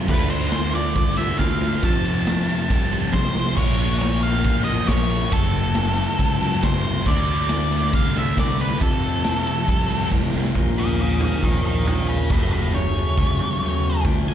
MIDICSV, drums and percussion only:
0, 0, Header, 1, 2, 480
1, 0, Start_track
1, 0, Tempo, 436364
1, 92, Time_signature, 4, 2, 24, 8
1, 15776, End_track
2, 0, Start_track
2, 0, Title_t, "Drums"
2, 87, Note_on_c, 9, 49, 100
2, 92, Note_on_c, 9, 36, 125
2, 197, Note_off_c, 9, 49, 0
2, 202, Note_off_c, 9, 36, 0
2, 329, Note_on_c, 9, 51, 69
2, 439, Note_off_c, 9, 51, 0
2, 569, Note_on_c, 9, 51, 95
2, 571, Note_on_c, 9, 38, 100
2, 679, Note_off_c, 9, 51, 0
2, 681, Note_off_c, 9, 38, 0
2, 812, Note_on_c, 9, 51, 58
2, 922, Note_off_c, 9, 51, 0
2, 1052, Note_on_c, 9, 51, 94
2, 1053, Note_on_c, 9, 36, 115
2, 1162, Note_off_c, 9, 51, 0
2, 1163, Note_off_c, 9, 36, 0
2, 1296, Note_on_c, 9, 51, 71
2, 1299, Note_on_c, 9, 38, 33
2, 1406, Note_off_c, 9, 51, 0
2, 1409, Note_off_c, 9, 38, 0
2, 1532, Note_on_c, 9, 51, 98
2, 1533, Note_on_c, 9, 36, 95
2, 1534, Note_on_c, 9, 38, 112
2, 1642, Note_off_c, 9, 51, 0
2, 1643, Note_off_c, 9, 36, 0
2, 1644, Note_off_c, 9, 38, 0
2, 1773, Note_on_c, 9, 51, 71
2, 1883, Note_off_c, 9, 51, 0
2, 2014, Note_on_c, 9, 36, 121
2, 2016, Note_on_c, 9, 51, 93
2, 2124, Note_off_c, 9, 36, 0
2, 2126, Note_off_c, 9, 51, 0
2, 2259, Note_on_c, 9, 51, 84
2, 2369, Note_off_c, 9, 51, 0
2, 2495, Note_on_c, 9, 51, 102
2, 2497, Note_on_c, 9, 38, 115
2, 2605, Note_off_c, 9, 51, 0
2, 2607, Note_off_c, 9, 38, 0
2, 2740, Note_on_c, 9, 51, 70
2, 2850, Note_off_c, 9, 51, 0
2, 2972, Note_on_c, 9, 36, 110
2, 2977, Note_on_c, 9, 51, 103
2, 3082, Note_off_c, 9, 36, 0
2, 3087, Note_off_c, 9, 51, 0
2, 3219, Note_on_c, 9, 51, 76
2, 3329, Note_off_c, 9, 51, 0
2, 3449, Note_on_c, 9, 36, 83
2, 3453, Note_on_c, 9, 48, 62
2, 3559, Note_off_c, 9, 36, 0
2, 3563, Note_off_c, 9, 48, 0
2, 3574, Note_on_c, 9, 38, 69
2, 3684, Note_off_c, 9, 38, 0
2, 3686, Note_on_c, 9, 38, 91
2, 3796, Note_off_c, 9, 38, 0
2, 3810, Note_on_c, 9, 38, 75
2, 3920, Note_off_c, 9, 38, 0
2, 3927, Note_on_c, 9, 49, 101
2, 3929, Note_on_c, 9, 36, 124
2, 4037, Note_off_c, 9, 49, 0
2, 4039, Note_off_c, 9, 36, 0
2, 4174, Note_on_c, 9, 51, 75
2, 4284, Note_off_c, 9, 51, 0
2, 4412, Note_on_c, 9, 51, 103
2, 4414, Note_on_c, 9, 38, 107
2, 4522, Note_off_c, 9, 51, 0
2, 4524, Note_off_c, 9, 38, 0
2, 4649, Note_on_c, 9, 51, 71
2, 4759, Note_off_c, 9, 51, 0
2, 4884, Note_on_c, 9, 51, 94
2, 4890, Note_on_c, 9, 36, 109
2, 4994, Note_off_c, 9, 51, 0
2, 5000, Note_off_c, 9, 36, 0
2, 5132, Note_on_c, 9, 51, 62
2, 5134, Note_on_c, 9, 38, 35
2, 5242, Note_off_c, 9, 51, 0
2, 5244, Note_off_c, 9, 38, 0
2, 5369, Note_on_c, 9, 51, 90
2, 5372, Note_on_c, 9, 36, 90
2, 5372, Note_on_c, 9, 38, 120
2, 5479, Note_off_c, 9, 51, 0
2, 5482, Note_off_c, 9, 36, 0
2, 5482, Note_off_c, 9, 38, 0
2, 5611, Note_on_c, 9, 51, 62
2, 5721, Note_off_c, 9, 51, 0
2, 5853, Note_on_c, 9, 36, 121
2, 5854, Note_on_c, 9, 51, 95
2, 5963, Note_off_c, 9, 36, 0
2, 5964, Note_off_c, 9, 51, 0
2, 6089, Note_on_c, 9, 51, 69
2, 6199, Note_off_c, 9, 51, 0
2, 6324, Note_on_c, 9, 51, 91
2, 6326, Note_on_c, 9, 38, 104
2, 6434, Note_off_c, 9, 51, 0
2, 6436, Note_off_c, 9, 38, 0
2, 6570, Note_on_c, 9, 51, 71
2, 6680, Note_off_c, 9, 51, 0
2, 6812, Note_on_c, 9, 36, 96
2, 6815, Note_on_c, 9, 51, 96
2, 6922, Note_off_c, 9, 36, 0
2, 6925, Note_off_c, 9, 51, 0
2, 7051, Note_on_c, 9, 51, 77
2, 7053, Note_on_c, 9, 38, 32
2, 7161, Note_off_c, 9, 51, 0
2, 7163, Note_off_c, 9, 38, 0
2, 7291, Note_on_c, 9, 36, 94
2, 7294, Note_on_c, 9, 51, 107
2, 7296, Note_on_c, 9, 38, 126
2, 7401, Note_off_c, 9, 36, 0
2, 7404, Note_off_c, 9, 51, 0
2, 7406, Note_off_c, 9, 38, 0
2, 7529, Note_on_c, 9, 51, 75
2, 7639, Note_off_c, 9, 51, 0
2, 7761, Note_on_c, 9, 57, 102
2, 7767, Note_on_c, 9, 36, 108
2, 7871, Note_off_c, 9, 57, 0
2, 7877, Note_off_c, 9, 36, 0
2, 8006, Note_on_c, 9, 51, 76
2, 8116, Note_off_c, 9, 51, 0
2, 8239, Note_on_c, 9, 51, 90
2, 8242, Note_on_c, 9, 38, 107
2, 8349, Note_off_c, 9, 51, 0
2, 8352, Note_off_c, 9, 38, 0
2, 8495, Note_on_c, 9, 51, 69
2, 8605, Note_off_c, 9, 51, 0
2, 8722, Note_on_c, 9, 51, 93
2, 8726, Note_on_c, 9, 36, 111
2, 8832, Note_off_c, 9, 51, 0
2, 8836, Note_off_c, 9, 36, 0
2, 8974, Note_on_c, 9, 51, 69
2, 8977, Note_on_c, 9, 38, 32
2, 9084, Note_off_c, 9, 51, 0
2, 9087, Note_off_c, 9, 38, 0
2, 9210, Note_on_c, 9, 36, 78
2, 9214, Note_on_c, 9, 51, 104
2, 9216, Note_on_c, 9, 38, 115
2, 9320, Note_off_c, 9, 36, 0
2, 9324, Note_off_c, 9, 51, 0
2, 9326, Note_off_c, 9, 38, 0
2, 9454, Note_on_c, 9, 51, 63
2, 9564, Note_off_c, 9, 51, 0
2, 9693, Note_on_c, 9, 36, 119
2, 9699, Note_on_c, 9, 51, 88
2, 9803, Note_off_c, 9, 36, 0
2, 9809, Note_off_c, 9, 51, 0
2, 9936, Note_on_c, 9, 51, 67
2, 10046, Note_off_c, 9, 51, 0
2, 10170, Note_on_c, 9, 51, 104
2, 10172, Note_on_c, 9, 38, 108
2, 10280, Note_off_c, 9, 51, 0
2, 10282, Note_off_c, 9, 38, 0
2, 10415, Note_on_c, 9, 51, 74
2, 10525, Note_off_c, 9, 51, 0
2, 10650, Note_on_c, 9, 36, 108
2, 10651, Note_on_c, 9, 51, 99
2, 10760, Note_off_c, 9, 36, 0
2, 10761, Note_off_c, 9, 51, 0
2, 10896, Note_on_c, 9, 51, 72
2, 10898, Note_on_c, 9, 38, 36
2, 11006, Note_off_c, 9, 51, 0
2, 11008, Note_off_c, 9, 38, 0
2, 11124, Note_on_c, 9, 38, 62
2, 11128, Note_on_c, 9, 36, 78
2, 11234, Note_off_c, 9, 38, 0
2, 11238, Note_off_c, 9, 36, 0
2, 11240, Note_on_c, 9, 38, 66
2, 11350, Note_off_c, 9, 38, 0
2, 11362, Note_on_c, 9, 38, 84
2, 11472, Note_off_c, 9, 38, 0
2, 11491, Note_on_c, 9, 38, 87
2, 11601, Note_off_c, 9, 38, 0
2, 11605, Note_on_c, 9, 43, 85
2, 11609, Note_on_c, 9, 36, 100
2, 11715, Note_off_c, 9, 43, 0
2, 11719, Note_off_c, 9, 36, 0
2, 12325, Note_on_c, 9, 43, 83
2, 12435, Note_off_c, 9, 43, 0
2, 12571, Note_on_c, 9, 36, 100
2, 12681, Note_off_c, 9, 36, 0
2, 13058, Note_on_c, 9, 43, 83
2, 13168, Note_off_c, 9, 43, 0
2, 13533, Note_on_c, 9, 36, 117
2, 13643, Note_off_c, 9, 36, 0
2, 14017, Note_on_c, 9, 43, 75
2, 14127, Note_off_c, 9, 43, 0
2, 14494, Note_on_c, 9, 36, 101
2, 14604, Note_off_c, 9, 36, 0
2, 14733, Note_on_c, 9, 43, 82
2, 14843, Note_off_c, 9, 43, 0
2, 15453, Note_on_c, 9, 36, 117
2, 15454, Note_on_c, 9, 43, 98
2, 15563, Note_off_c, 9, 36, 0
2, 15564, Note_off_c, 9, 43, 0
2, 15776, End_track
0, 0, End_of_file